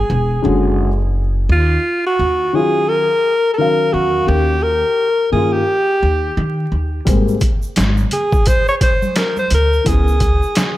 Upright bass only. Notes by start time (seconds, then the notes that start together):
0.10 E1
0.45 F#1
1.49 D#2
2.19 D#2
3.94 E2
4.28 D#2
5.33 G2
6.03 D#2
6.37 D#3
6.72 D#2
7.07 G#1
7.77 G#1
9.51 D2
9.86 C#2